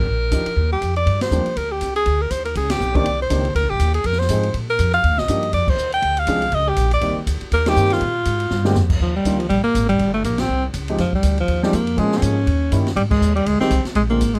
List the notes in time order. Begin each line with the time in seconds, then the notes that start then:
Already playing: A#4
0.06 A#1
0.31 D2 F3 D4 D#4 G4, kick, hi-hat pedal, ride
0.46 muted upright bass stroke, ride
0.56 D#2, kick
0.72 G4
0.81 F2, kick, hi-hat pedal, ride
0.96 D5, ride
1.06 G2, kick, ride
1.21 C5, snare, ride
1.31 D#2 F3 G3 A#3 D4 G4, hi-hat pedal
1.46 ride
1.56 D2 A#4, kick, ride
1.71 G4
1.81 C2, kick, hi-hat pedal, ride
1.96 G#4, ride
2.06 D2, kick, ride
2.21 A#4
2.31 D#2 C5, kick, hi-hat pedal, ride
2.45 A#4, ride
2.55 C#2 G#4, kick, ride
2.70 G4, snare, ride
2.80 B1, hi-hat pedal
2.95 D#3 A#3 C4 D4 G4 D5, kick, ride
3.05 C2, ride
3.22 C5
3.30 C#2 D#3 A#3 C4 D4 G4, kick, hi-hat pedal, ride
3.45 ride
3.55 D2 A#4, kick, ride
3.63 C2
3.70 A#1 G4
3.80 D#2, kick, hi-hat pedal, ride
3.94 G#4, ride
4.04 F2 A#4, kick, ride
4.13 snare
4.19 C5, snare
4.29 G#2 F3 G#3 C4 D#4 G#4, kick, hi-hat pedal, ride
4.43 ride
4.54 A#2, kick, ride
4.70 A#4
4.79 F2, kick, hi-hat pedal, ride
4.93 F5, ride
5.04 D#2, kick, ride
5.11 D2
5.18 A#1 D#5, snare
5.28 G2 F3 A#3 D4 D#4 G4, kick, hi-hat pedal, ride
5.43 ride
5.53 F2 D5, kick, ride
5.68 C5, kick, crash
5.77 D#2, hi-hat pedal
5.92 G5, ride
6.02 D2, kick, ride
6.17 F5, ride
6.27 C2 F3 G#3 C4 D4 G#4, kick, hi-hat pedal, ride
6.42 ride
6.52 C#2 D#5, kick, ride
6.69 G4
6.76 A#1, kick, hi-hat pedal, ride
6.91 D5, ride
7.01 C2 D#3 G3 A#3 C4 G4, kick, ride
7.16 muted upright bass stroke
7.27 D2, kick, hi-hat pedal, ride
7.41 muted upright bass stroke, ride
7.51 D#2 A#4, kick, ride
7.66 D#3 G3 A#3 C4 G4, snare, ride
7.76 G2, hi-hat pedal
7.85 snare
7.90 F4, snare, ride
8.01 A#2, kick, ride
8.25 G#2, kick, hi-hat pedal, ride
8.40 ride
8.50 G2, snare
8.65 D3 G#3 A#3 C4 G4, snare
8.75 F2, snare, hi-hat pedal
8.90 kick, crash
9.00 D#2 F3, kick
9.16 G3
9.25 D2 D#3 G3 A#3 D4 F4, kick, hi-hat pedal, ride
9.39 F3, ride
9.49 A#1 G3, kick, ride
9.63 A#3, muted upright bass stroke
9.75 G#1, kick, hi-hat pedal, ride
9.89 G3, ride
9.99 G1, kick, ride
10.14 A3
10.24 A#1 A#3, kick, hi-hat pedal, ride
10.38 C4, snare, ride
10.49 C2
10.74 C#2, kick, hi-hat pedal, ride
10.88 F3 G#3 C4 D#4 G4, ride
10.98 F2 F3, kick, snare, ride
11.13 G3, kick
11.23 D2, kick, hi-hat pedal, ride
11.38 F3, ride
11.48 D#2, kick, ride
11.63 F3 G3 G#3 C4 D#4 G4, snare
11.73 F2 A#3, kick, hi-hat pedal, ride
11.87 ride
11.97 A#2 F3 G#3 A#3 C#4 G#4, kick, ride
12.12 snare
12.17 C4
12.22 G#2 C#4, kick, hi-hat pedal, ride
12.47 D#2, kick, ride
12.72 G2 D#3 G3 A#3 C#4 E4, kick, hi-hat pedal, ride
12.87 snare, ride
12.96 G#2 G3, kick, ride
13.10 G#3, kick, crash
13.21 D#2, hi-hat pedal
13.36 G3, ride
13.46 D2 G#3, kick, ride
13.60 D#3 G3 G#3 C4 G4, muted upright bass stroke, snare
13.70 C2, kick, hi-hat pedal, ride
13.85 muted upright bass stroke, snare, ride
13.95 A#1 G#3, kick, ride
14.10 D3 G#3 A#3 C4 F4
14.20 G#1, kick, hi-hat pedal, ride
14.34 G#3, ride